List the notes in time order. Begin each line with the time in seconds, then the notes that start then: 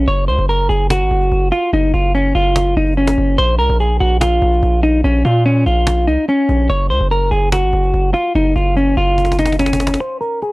0.08 F#1 C#5, cajon slap
0.28 C#2 C5, cajon slap
0.39 F#1
0.49 A#4, cajon slap
0.69 F#1 G#4, cajon slap
0.90 F#4, cajon slap
1.01 G#1
1.11 F#1, cajon slap
1.21 cajon slap
1.32 F#1, cajon slap
1.52 F4, cajon slap
1.73 F#1 D#4, cajon slap
1.94 F#1 F4, cajon slap
2.14 C#4, cajon slap
2.35 F#1 F4, cajon slap
2.56 cajon slap
2.77 F#1 D#4, cajon slap
2.82 cajon slap
2.87 cajon slap
2.92 cajon slap
2.97 C#4, cajon slap
3.07 cajon slap
3.18 F#1
3.38 A#1 C5, cajon slap
3.59 C2 A#4, cajon slap
3.70 A#1
3.80 G#4, cajon slap
4.00 A#1 F#4, cajon slap
4.21 F4, cajon slap
4.42 A#1, cajon slap
4.52 cajon slap
4.63 A#1, cajon slap
4.83 D#4, cajon slap
5.04 A#1 C#4, cajon slap
5.25 A#2 F4, cajon slap
5.45 C#4, cajon slap
5.66 A#1 F4, cajon slap
5.87 cajon slap
6.07 C2 D#4, cajon slap
6.28 C#4, cajon slap
6.49 A#1, cajon slap
6.70 F#1 C#5, cajon slap
6.90 C#2 C5, cajon slap
7.01 F#1
7.11 A#4, cajon slap
7.31 F#1 G#4, cajon slap
7.52 F#4, cajon slap
7.63 G#1
7.73 F#1, cajon slap
7.83 cajon slap
7.94 F#1, cajon slap
8.14 F4, cajon slap
8.35 F#1 D#4, cajon slap
8.56 F#1 F4, cajon slap
8.77 C#4, cajon slap
8.97 F#1 F4, cajon slap
9.18 cajon slap
9.25 cajon slap
9.32 cajon slap
9.39 D#4, cajon slap
9.44 cajon slap
9.46 cajon slap
9.49 cajon slap
9.52 cajon slap
9.54 cajon slap
9.59 C#4, cajon slap
9.66 cajon slap
9.73 cajon slap
9.80 cajon slap
9.87 cajon slap
9.94 cajon slap
10.00 C5
10.21 A#4, cajon slap
10.42 G#4, cajon slap